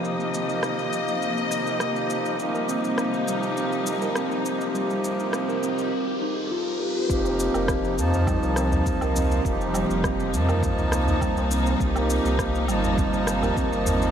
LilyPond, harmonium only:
\new Staff \with { instrumentName = "Harmonium" } { \time 4/4 \key c \dorian \tempo 4 = 102 <f bes ees' g'>1 | <c f bes ees' g'>1~ | <c f bes ees' g'>2 r2 | <f bes ees' g'>4. <f bes ees' a''>2~ <f bes ees' a''>8 |
<f bes ees' g'>4. <f bes ees' a''>2~ <f bes ees' a''>8 | <f bes ees' g'>4. <f bes ees' a''>2~ <f bes ees' a''>8 | }